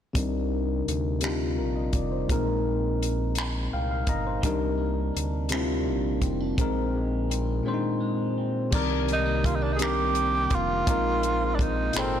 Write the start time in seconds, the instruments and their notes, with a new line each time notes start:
0.13 analog synth bass C2, tine electric piano C3 G3 D4 D#4, kick, closed hi-hat
0.18 tine electric piano A#4
0.88 analog synth bass D2, closed hi-hat
1.21 tine electric piano C3 G3 D4 D#4, finger snap, closed hi-hat
1.25 tine electric piano F4
1.58 analog synth bass A#1, tine electric piano A#4
1.76 tine electric piano D#5
1.93 analog synth bass F1, tine electric piano D5, kick, closed hi-hat
2.12 tine electric piano C5
2.28 analog synth bass A#1, tine electric piano A#2 G#3 C4 D#4 A#4, kick, closed hi-hat
3.03 closed hi-hat
3.35 finger snap, closed hi-hat
3.73 analog synth bass C2, tine electric piano F5 G5
3.91 tine electric piano F5
4.07 analog synth bass G1, tine electric piano D#5 A#5, kick, closed hi-hat
4.27 tine electric piano C5
4.42 analog synth bass C2, tine electric piano C3 G3 D4 D#4 A#4, clean electric guitar C3, kick, closed hi-hat
4.78 clean electric guitar A#3
5.15 analog synth bass D2, clean electric guitar D4, closed hi-hat
5.49 tine electric piano C3 G3 D4, clean electric guitar D#3, finger snap, closed hi-hat
5.53 tine electric piano C4 E4
5.60 tine electric piano F4
5.86 analog synth bass A#1, clean electric guitar A#3
6.22 analog synth bass F1, clean electric guitar C4, kick, closed hi-hat
6.40 clean electric guitar D4
6.57 analog synth bass A#1, tine electric piano A#2 G#3 C4 D#4, clean electric guitar A#2, kick, closed hi-hat
6.61 tine electric piano A#4
6.95 clean electric guitar G#3
7.30 clean electric guitar C4, closed hi-hat
7.64 tine electric piano A#2 G#3 C4 D4, clean electric guitar D#3
7.68 tine electric piano C5
7.74 tine electric piano D#4
8.00 clean electric guitar G#3
8.38 clean electric guitar C4
8.71 analog synth bass C2, tine electric piano C3 D#3 G3 D5, clean electric guitar C3 D4, kick, crash
8.75 tine electric piano A#4
9.08 clean electric guitar G#3, closed hi-hat
9.13 tenor saxophone D#4
9.25 clean electric guitar A#3
9.44 clean electric guitar C4, tenor saxophone F4, kick, closed hi-hat
9.55 tenor saxophone D#4
9.62 clean electric guitar D4, tenor saxophone D4
9.73 tenor saxophone D#4 G#4
9.79 tine electric piano C3 D#3 G3 D4 A#4, clean electric guitar A#3, finger snap, closed hi-hat
9.83 tenor saxophone G4
10.15 clean electric guitar C4, closed hi-hat
10.35 clean electric guitar D4
10.50 analog synth bass F1, clean electric guitar A#3, kick, closed hi-hat
10.55 tenor saxophone F4
10.86 analog synth bass A#1, tine electric piano A#2 G#3 C4 D#4 A#4, clean electric guitar A#2 C4, kick, closed hi-hat
11.23 clean electric guitar G#3, closed hi-hat
11.55 clean electric guitar C4, tenor saxophone D4
11.59 tenor saxophone D#4, kick, closed hi-hat
11.93 analog synth bass G#1, tine electric piano A#2 G#3 C4 D#4, clean electric guitar G#3, finger snap, closed hi-hat
11.97 tenor saxophone C4, tine electric piano A4
12.04 tine electric piano A#4